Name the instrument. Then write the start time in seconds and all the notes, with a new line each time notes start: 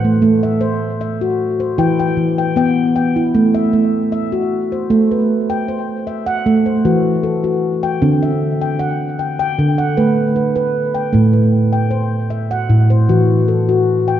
handpan
Already playing: E3 F#5
0.05 A3
0.22 A3
0.43 E5
0.61 C5
1.01 E5
1.21 F#4
1.60 C5
1.78 E3 E4 G5
2.00 G5
2.17 E3
2.38 G5
2.56 B3 G5
2.96 G5
3.16 E4
3.35 A3
3.55 E5
3.73 A3
4.12 E5
4.32 F#4
4.72 C5
4.90 A3
5.11 B4
5.50 G5
5.68 C5
6.07 E5
6.26 F#5
6.46 A3
6.66 C5
6.85 E3 F#4
7.23 A4
7.44 F#4
7.83 G5
8.02 D3 C4
8.23 E5
8.62 G5
8.79 F#5
9.19 G5
9.39 G5
9.59 D3
9.78 F#5
9.97 A3 B4
10.36 B4
10.56 B4
10.95 G5
11.13 A2 A3
11.33 B4
11.73 G5
11.91 C5
12.30 E5
12.51 F#5
12.70 A2
12.90 C5
13.09 E3 F#4
13.48 A4
13.69 F#4
14.08 G5